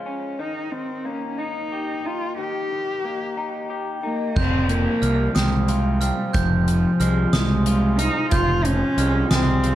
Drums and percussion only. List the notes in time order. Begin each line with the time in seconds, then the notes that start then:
4.37 kick, crash
4.69 closed hi-hat
5.03 closed hi-hat
5.36 snare, closed hi-hat
5.68 closed hi-hat
6.01 closed hi-hat
6.34 kick, closed hi-hat
6.68 closed hi-hat
7.01 closed hi-hat
7.33 snare, closed hi-hat
7.66 closed hi-hat
7.99 closed hi-hat
8.31 kick, closed hi-hat
8.65 closed hi-hat
8.98 closed hi-hat
9.31 snare, closed hi-hat
9.64 closed hi-hat